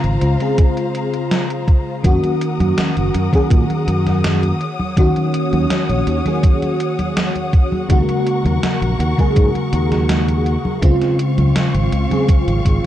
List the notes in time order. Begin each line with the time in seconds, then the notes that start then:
Already playing: C#3 G#3 C4 F4 C5 F5 A#5
0.04 G#1, closed hi-hat
0.21 C#2, closed hi-hat
0.39 C#3 G#3 C4 G#4, closed hi-hat
0.58 kick, closed hi-hat
0.77 closed hi-hat
0.95 closed hi-hat
1.14 closed hi-hat
1.31 snare, closed hi-hat
1.50 closed hi-hat
1.68 kick, closed hi-hat
2.03 F#2 D#3 A#3 C#4 F#4 A#4 F#5 D#6, kick, closed hi-hat, high conga
2.24 closed hi-hat, high conga
2.41 closed hi-hat
2.60 F#2, closed hi-hat, high conga
2.78 snare, closed hi-hat, high conga
2.97 F#1, closed hi-hat, high conga
3.15 F#2, closed hi-hat
3.32 D#3 A#3 C#4 G#4, kick, closed hi-hat, high conga
3.50 A#2, kick, closed hi-hat, high conga
3.70 closed hi-hat, high conga
3.87 F#2, closed hi-hat
4.07 snare, closed hi-hat, high conga
4.24 snare, closed hi-hat, high conga
4.43 closed hi-hat, high conga
4.60 C#5 F#5, closed hi-hat
4.80 high conga
4.96 D#2 D#3 A#3 C#4 F#4, kick, closed hi-hat, high conga
5.16 closed hi-hat, high conga
5.34 closed hi-hat
5.53 D#2, closed hi-hat, high conga
5.70 snare, closed hi-hat, high conga
5.89 A#1, closed hi-hat, high conga
6.07 D#2, closed hi-hat
6.25 D#3 A#3 C#4 G#4, closed hi-hat, high conga
6.43 kick, closed hi-hat, high conga
6.62 closed hi-hat, high conga
6.80 closed hi-hat
6.99 closed hi-hat, high conga
7.17 snare, closed hi-hat, high conga
7.35 closed hi-hat, high conga
7.53 kick, closed hi-hat
7.72 high conga
7.89 D#2 C#3 G#3 A#3 F#4 A#4 C#6, kick, closed hi-hat, high conga
8.09 closed hi-hat, high conga
8.27 closed hi-hat
8.45 D#2, closed hi-hat, high conga
8.63 snare, closed hi-hat, high conga
8.82 A#1, closed hi-hat, high conga
8.99 D#2, closed hi-hat
9.17 C#3 G#3 A#3 G#4, kick, closed hi-hat, high conga
9.36 G#2, kick, closed hi-hat, high conga
9.55 closed hi-hat, high conga
9.73 D#2, closed hi-hat
9.92 snare, closed hi-hat, high conga
10.09 snare, closed hi-hat, high conga
10.28 closed hi-hat, high conga
10.46 closed hi-hat
10.65 high conga
10.81 C#2 C#3 G#3 C4 F4 F5 C#6, kick, closed hi-hat, high conga
11.02 snare, closed hi-hat, high conga
11.19 closed hi-hat
11.38 C#2, closed hi-hat, high conga
11.56 snare, closed hi-hat, high conga
11.74 G#1, closed hi-hat, high conga
11.92 C#2, closed hi-hat
12.09 C#3 G#3 C4 G#4, closed hi-hat, high conga
12.29 kick, closed hi-hat, high conga
12.47 G#1, closed hi-hat, high conga
12.65 G#1, kick, closed hi-hat